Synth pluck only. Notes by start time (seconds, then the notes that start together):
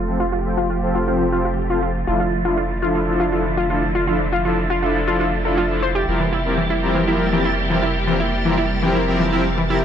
0.20 F4
0.32 F4
0.57 F4
0.70 F4
0.95 F4
1.07 F4
1.32 F4
1.45 F4
1.70 F4
1.82 F4
2.07 F4
2.20 F4
2.45 F4
2.57 F4
2.82 F4
2.95 F4
3.20 F4
3.32 F4
3.57 F4
3.70 F4
3.95 F4
4.07 F4
4.33 F4
4.45 F4
4.70 F4
4.83 F4
5.08 F4
5.20 F4
5.45 A4
5.57 F4
5.83 C5
5.95 G4
6.20 E3
6.33 E4
6.58 E3
6.70 E4
6.95 E3
7.08 E4
7.33 E3
7.45 E4
7.70 E3
7.83 E4
8.08 E3
8.20 E4
8.45 E3
8.58 E4
8.82 E3
8.95 E4
9.20 E3
9.33 E4
9.58 E3
9.70 E4